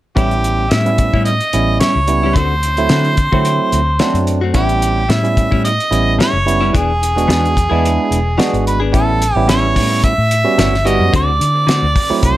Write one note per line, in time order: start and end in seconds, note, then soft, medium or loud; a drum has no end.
0.16 0.68 A1 medium
0.16 0.34 A2 medium
0.16 0.65 G3 medium
0.16 0.34 G3 medium
0.16 0.65 B3 medium
0.16 0.65 C#4 medium
0.16 0.34 C#4 medium
0.16 0.65 E4 medium
0.16 0.35 E4 medium
0.16 0.73 G4 medium
0.16 kick loud
0.16 closed hi-hat medium
0.31 closed hi-hat soft
0.44 closed hi-hat medium
0.71 0.89 A2 medium
0.71 1.11 A2 medium
0.71 0.89 G3 medium
0.71 0.89 C#4 medium
0.71 0.90 E4 medium
0.71 1.24 E5 medium
0.71 snare loud
0.71 closed hi-hat medium
0.85 1.33 G3 medium
0.85 1.33 B3 medium
0.85 1.33 C#4 medium
0.85 1.33 E4 medium
0.85 closed hi-hat soft
0.98 kick medium
0.98 closed hi-hat medium
1.14 1.39 A2 medium
1.14 1.31 G3 soft
1.14 1.30 C#4 soft
1.14 1.29 E4 soft
1.14 kick medium
1.25 1.76 D#5 medium
1.25 closed hi-hat medium
1.41 closed hi-hat soft
1.53 1.79 A1 medium
1.53 1.93 G3 medium
1.53 1.93 B3 medium
1.53 1.93 C#4 medium
1.53 1.93 E4 medium
1.53 closed hi-hat medium
1.80 1.98 A2 medium
1.80 1.99 G3 medium
1.80 1.99 C#4 medium
1.80 1.99 E4 medium
1.80 2.36 C#5 medium
1.80 snare medium
1.80 closed hi-hat medium
1.95 2.33 C#2 medium
2.08 2.35 G3 medium
2.08 2.35 B3 medium
2.08 2.36 C#4 medium
2.08 2.36 E4 medium
2.08 closed hi-hat medium
2.23 2.36 G3 soft
2.23 2.37 C#4 soft
2.23 2.36 E4 soft
2.35 2.87 D2 medium
2.35 2.53 D3 medium
2.35 2.53 A3 medium
2.35 2.54 C4 medium
2.35 2.54 F#4 medium
2.35 4.27 C5 medium
2.35 kick medium
2.35 closed hi-hat medium
2.63 closed hi-hat medium
2.77 3.15 F#3 medium
2.77 3.15 A3 medium
2.77 3.15 C4 medium
2.77 3.15 E4 medium
2.77 closed hi-hat soft
2.89 3.08 D3 medium
2.89 3.30 D3 medium
2.89 3.08 A3 medium
2.89 3.08 C4 medium
2.89 3.09 F#4 medium
2.89 snare loud
2.89 closed hi-hat medium
3.05 closed hi-hat soft
3.17 kick medium
3.17 closed hi-hat medium
3.32 3.58 D3 medium
3.32 3.80 F#3 medium
3.32 3.80 A3 medium
3.32 3.49 A3 soft
3.32 3.80 C4 medium
3.32 3.49 C4 soft
3.32 3.80 E4 medium
3.32 3.48 F#4 medium
3.32 kick medium
3.45 closed hi-hat medium
3.72 3.98 D2 medium
3.72 closed hi-hat medium
3.99 4.17 D3 medium
3.99 4.39 F#3 medium
3.99 4.39 A3 medium
3.99 4.18 A3 medium
3.99 4.39 C4 medium
3.99 4.18 C4 medium
3.99 4.39 D4 medium
3.99 4.18 F#4 medium
3.99 snare loud
3.99 closed hi-hat medium
4.14 4.52 F#2 medium
4.14 closed hi-hat soft
4.27 closed hi-hat medium
4.41 4.55 A3 soft
4.41 4.55 C4 soft
4.41 4.54 F#4 soft
4.54 5.06 A1 medium
4.54 4.72 A2 medium
4.54 5.03 G3 medium
4.54 4.72 G3 medium
4.54 5.03 B3 medium
4.54 5.03 C#4 medium
4.54 4.73 C#4 medium
4.54 5.03 E4 medium
4.54 4.73 E4 medium
4.54 5.12 G4 medium
4.54 kick medium
4.54 closed hi-hat medium
4.69 closed hi-hat soft
4.82 closed hi-hat medium
5.09 5.49 A2 medium
5.09 5.27 A2 medium
5.09 5.27 G3 medium
5.09 5.28 C#4 medium
5.09 5.28 E4 medium
5.09 5.64 E5 medium
5.09 snare medium
5.09 closed hi-hat medium
5.23 5.71 G3 medium
5.23 5.72 B3 medium
5.23 5.71 C#4 medium
5.23 5.71 E4 medium
5.23 closed hi-hat soft
5.37 kick medium
5.37 closed hi-hat soft
5.51 5.78 A2 medium
5.51 5.69 G3 soft
5.51 5.68 C#4 soft
5.51 5.67 E4 soft
5.51 kick medium
5.64 6.15 D#5 loud
5.64 closed hi-hat medium
5.80 closed hi-hat soft
5.91 6.17 A1 medium
5.91 6.31 G3 medium
5.91 6.30 B3 medium
5.91 6.31 C#4 medium
5.91 6.31 E4 medium
5.91 closed hi-hat medium
6.19 6.36 A2 medium
6.19 6.37 G3 medium
6.19 6.37 C#4 medium
6.19 6.37 E4 medium
6.19 6.72 C#5 medium
6.19 snare medium
6.19 closed hi-hat medium
6.33 6.71 F#1 medium
6.46 6.74 G3 medium
6.46 6.74 B3 medium
6.46 6.74 C#4 medium
6.46 6.74 E4 medium
6.46 closed hi-hat medium
6.61 6.73 G3 soft
6.61 6.74 C#4 soft
6.61 6.74 E4 soft
6.73 7.26 E1 medium
6.73 6.91 E3 medium
6.73 6.91 B3 medium
6.73 6.92 D4 medium
6.73 6.92 G#4 medium
6.73 8.63 G#4 medium
6.73 kick loud
6.73 closed hi-hat medium
7.03 closed hi-hat medium
7.16 7.54 G#3 medium
7.16 7.54 B3 medium
7.16 7.54 D4 medium
7.16 7.54 F#4 medium
7.16 closed hi-hat soft
7.28 7.68 E2 medium
7.28 7.46 E3 medium
7.28 7.46 B3 medium
7.28 7.46 D4 medium
7.28 7.47 G#4 medium
7.28 snare medium
7.28 closed hi-hat medium
7.45 closed hi-hat soft
7.57 kick medium
7.57 closed hi-hat medium
7.70 7.97 E2 medium
7.70 8.18 G#3 medium
7.70 8.19 B3 medium
7.70 7.88 B3 soft
7.70 8.18 D4 medium
7.70 7.87 D4 medium
7.70 8.18 E4 medium
7.70 7.86 G#4 medium
7.85 closed hi-hat medium
8.11 8.37 E1 medium
8.11 closed hi-hat medium
8.38 8.56 E3 medium
8.38 8.78 G#3 medium
8.38 8.78 B3 medium
8.38 8.56 B3 medium
8.38 8.78 D4 medium
8.38 8.56 D4 loud
8.38 8.78 F#4 medium
8.38 8.57 G#4 medium
8.38 snare loud
8.38 closed hi-hat medium
8.53 8.91 G#1 medium
8.53 closed hi-hat soft
8.67 8.79 B4 medium
8.67 closed hi-hat medium
8.80 8.94 B3 soft
8.80 8.94 D4 medium
8.80 8.93 G#4 medium
8.93 9.34 A1 medium
8.93 9.10 A2 medium
8.93 9.22 G3 medium
8.93 9.11 G3 medium
8.93 9.22 B3 medium
8.93 9.22 C#4 medium
8.93 9.11 C#4 medium
8.93 9.22 E4 medium
8.93 9.12 E4 medium
8.93 9.45 A4 medium
8.93 kick medium
8.93 closed hi-hat medium
9.22 closed hi-hat medium
9.36 9.77 A1 medium
9.36 10.12 G3 medium
9.36 10.12 B3 medium
9.36 10.12 C#4 medium
9.36 10.12 E4 medium
9.48 9.65 A2 medium
9.48 9.66 G3 medium
9.48 9.66 C#4 medium
9.48 9.67 E4 medium
9.48 10.00 C#5 medium
9.48 snare loud
9.48 closed hi-hat medium
9.76 10.15 A2 medium
9.76 kick medium
9.76 open hi-hat medium
10.04 10.90 E5 loud
10.04 kick medium
10.04 closed hi-hat medium
10.18 10.44 A2 medium
10.31 closed hi-hat medium
10.44 10.73 G3 medium
10.44 10.74 B3 medium
10.44 10.74 C#4 medium
10.44 10.74 F#4 medium
10.58 10.98 G1 medium
10.58 10.75 A2 medium
10.58 10.76 G3 medium
10.58 10.76 C#4 medium
10.58 10.76 E4 medium
10.58 snare loud
10.58 closed hi-hat medium
10.74 snare soft
10.85 11.13 G3 medium
10.85 11.04 G3 soft
10.85 11.13 B3 medium
10.85 11.13 C#4 medium
10.85 11.03 C#4 soft
10.85 11.02 E4 medium
10.85 11.13 F#4 medium
10.85 11.14 D#5 loud
10.85 closed hi-hat medium
11.00 11.12 F#2 medium
11.13 11.39 D2 medium
11.13 11.30 D3 medium
11.13 11.30 A3 medium
11.13 11.31 C4 medium
11.13 11.31 F#4 medium
11.13 12.20 D5 loud
11.13 kick loud
11.13 closed hi-hat medium
11.40 11.80 D3 medium
11.40 closed hi-hat medium
11.67 11.85 D3 medium
11.67 11.85 A3 medium
11.67 11.85 C4 medium
11.67 11.86 F#4 medium
11.67 snare loud
11.67 closed hi-hat medium
11.83 11.94 D2 medium
11.96 kick medium
11.96 open hi-hat medium
12.10 12.37 F#3 medium
12.10 12.37 A3 medium
12.10 12.37 C4 medium
12.10 12.37 E4 medium
12.10 muted fingered electric bass stroke soft
12.23 12.37 C2 medium
12.23 12.37 C5 medium
12.23 kick medium
12.23 closed hi-hat medium